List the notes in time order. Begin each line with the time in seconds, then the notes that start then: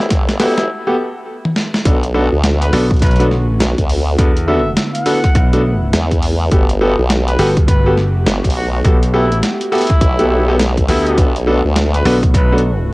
Already playing: A3 B3 F#4 G4
0.10 G1, kick, snare, closed hi-hat
0.29 snare, closed hi-hat
0.40 B3 E4 F#4 G4 A4, snare, open hi-hat
0.58 G1, snare, closed hi-hat
0.87 B3 F#4 G4 A4
1.45 high tom
1.56 snare
1.74 snare
1.85 B1 D3 A3 B3 D4 F#4 A4, kick, closed hi-hat
2.03 closed hi-hat
2.14 B3 D4 F#4 A4
2.32 D2
2.44 snare, closed hi-hat
2.62 B4, closed hi-hat
2.73 B1 B3 D4 F#4 A4, open hi-hat
2.91 kick, closed hi-hat
2.94 closed hi-hat
2.96 closed hi-hat
2.99 B1 B4, kick, closed hi-hat
3.02 closed hi-hat
3.07 closed hi-hat
3.11 closed hi-hat
3.16 B3 D4 F#4 A4, closed hi-hat
3.20 closed hi-hat
3.31 snare
3.60 B1, snare, closed hi-hat
3.78 D2, kick, closed hi-hat
3.90 open hi-hat
4.18 E2 B3 D4 E4 F#4 A4, kick, closed hi-hat
4.37 closed hi-hat
4.47 B3 D4 F#4 A4 E5
4.77 snare, closed hi-hat
4.95 F#5, closed hi-hat
5.06 B3 D4 F#4 A4, open hi-hat
5.24 kick, snare, closed hi-hat
5.35 B1, kick, closed hi-hat
5.53 B3 D4 F#4 A4, closed hi-hat
5.93 E2, snare, closed hi-hat
6.11 kick, closed hi-hat
6.22 open hi-hat
6.51 G1 B3 F#4 G4 A4, kick, closed hi-hat
6.69 closed hi-hat
6.81 B3 F#4 G4 A4
6.99 B1
7.10 snare, closed hi-hat
7.28 B4, closed hi-hat
7.39 G1 B3 F#4 G4 A4, open hi-hat
7.57 kick, closed hi-hat
7.68 G1 B4, kick, closed hi-hat
7.86 B3 F#4 G4 A4
7.97 snare
8.26 G1, snare, closed hi-hat
8.44 B1, kick, closed hi-hat
8.50 open hi-hat
8.55 F#4
8.73 F#4
8.84 B1 B3 F#4 G4 A4, kick, closed hi-hat
9.03 closed hi-hat
9.14 B3 E4 F#4 G4 A4
9.32 closed hi-hat
9.43 snare, closed hi-hat
9.61 closed hi-hat
9.72 B3 E4 F#4 G4 A4, open hi-hat
9.75 open hi-hat
9.78 open hi-hat
9.81 open hi-hat
9.87 kick, snare, closed hi-hat, open hi-hat
10.01 B1, kick, closed hi-hat
10.19 B3 F#4 G4 A4, closed hi-hat
10.30 B3 F#4 G4 A4
10.48 B3 F#4 G4 A4
10.59 snare, closed hi-hat
10.77 kick, closed hi-hat
10.88 D2 B3 E4 F#4 G4 A4, open hi-hat
11.07 closed hi-hat
11.17 B1 D3 B3 D4 F#4 A4, kick, closed hi-hat
11.36 closed hi-hat
11.47 B3 D4 F#4 A4
11.65 D2
11.76 snare, closed hi-hat
11.94 B4, closed hi-hat
12.05 B1 B3 D4 F#4 A4, open hi-hat
12.23 kick, closed hi-hat
12.34 B1 B4, kick, closed hi-hat
12.52 B3 D4 F#4 A4
12.58 closed hi-hat